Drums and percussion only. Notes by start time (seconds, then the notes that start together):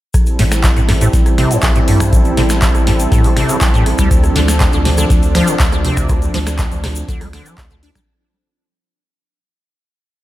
0.14 kick, cross-stick, closed hi-hat, shaker
0.26 closed hi-hat, shaker
0.39 snare, open hi-hat
0.52 finger snap, cross-stick, snare, closed hi-hat, shaker
0.64 kick, clap, closed hi-hat, shaker
0.76 closed hi-hat, shaker
0.89 cross-stick, snare, open hi-hat
1.01 closed hi-hat, shaker
1.13 kick, snare, closed hi-hat, shaker
1.26 cross-stick, closed hi-hat, shaker
1.38 finger snap, snare, open hi-hat
1.51 closed hi-hat, shaker
1.62 kick, cross-stick, clap, closed hi-hat, shaker
1.75 closed hi-hat, shaker
1.88 open hi-hat
2.00 finger snap, kick, cross-stick, closed hi-hat, shaker
2.13 kick, closed hi-hat, shaker
2.25 closed hi-hat, shaker
2.37 cross-stick, snare, open hi-hat
2.49 finger snap, snare, closed hi-hat, shaker
2.62 kick, clap, closed hi-hat, shaker
2.75 cross-stick, closed hi-hat, shaker
2.87 snare, open hi-hat
3.00 closed hi-hat, shaker
3.12 kick, cross-stick, snare, closed hi-hat, shaker
3.24 open hi-hat, shaker
3.37 finger snap, snare, open hi-hat
3.49 cross-stick, closed hi-hat, shaker
3.61 kick, clap, closed hi-hat, shaker
3.74 closed hi-hat, shaker
3.86 cross-stick, open hi-hat
3.98 finger snap, kick, closed hi-hat, shaker
4.11 kick, closed hi-hat, shaker
4.24 cross-stick, closed hi-hat, shaker
4.36 snare, open hi-hat
4.48 finger snap, snare, closed hi-hat, shaker
4.60 kick, cross-stick, clap, closed hi-hat, shaker
4.73 closed hi-hat, shaker
4.85 snare, open hi-hat
4.98 cross-stick, closed hi-hat, shaker
5.10 kick, snare, closed hi-hat, shaker
5.23 closed hi-hat, shaker
5.35 finger snap, cross-stick, snare, open hi-hat
5.47 closed hi-hat, shaker
5.60 kick, clap, closed hi-hat, shaker
5.72 cross-stick, closed hi-hat, shaker
5.85 open hi-hat
5.97 finger snap, kick, closed hi-hat, shaker
6.09 kick, cross-stick, closed hi-hat, shaker
6.22 closed hi-hat, shaker
6.34 snare, open hi-hat
6.47 finger snap, cross-stick, snare, closed hi-hat, shaker
6.59 kick, clap, closed hi-hat, shaker
6.71 closed hi-hat, shaker
6.84 cross-stick, snare, open hi-hat
6.95 closed hi-hat, shaker
7.09 kick, snare, closed hi-hat, shaker
7.21 cross-stick, open hi-hat, shaker
7.33 finger snap, snare, open hi-hat
7.46 closed hi-hat, shaker
7.58 kick, cross-stick, clap, closed hi-hat, shaker
7.70 closed hi-hat, shaker
7.83 open hi-hat
7.95 finger snap, kick, cross-stick, closed hi-hat, shaker